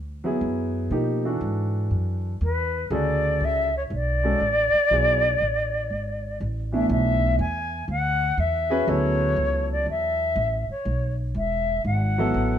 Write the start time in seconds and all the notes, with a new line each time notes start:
Already playing: D2
0.24 F#3 B3 E4 G#4
0.41 F#2
0.91 B2 F3 A#3 D#4 G4
1.25 E3 D4 F#4 A4
1.41 G#2
1.91 F#2
2.41 E2 B4
2.90 D2 C#3 F#4 G#4 A4 D5
3.40 C#2
3.45 E5
3.77 C#5
3.90 B1
3.95 D5
4.24 G#3 C#4 F#4 A4
4.40 A1
4.74 muted upright bass stroke
4.91 B1 F#3 B3 E4 G#4
5.41 A1
5.90 G#1
6.40 A1
6.72 B2 E3 A3 D4 E4 E5
6.89 B1 E5
7.39 E2 G#5
7.88 D2 F#5
8.37 E2 E5
8.70 C#4 F#4 G#4 B4
8.87 D2 F#3 B3 E4 A4 C#5
9.36 C#2
9.72 D5
9.86 E2
9.90 E5
10.36 A1
10.69 C#5, muted upright bass stroke
10.85 B1
11.35 E1 E5
11.84 G#1 F#5
12.18 F#3 B3 E4 A4
12.34 A1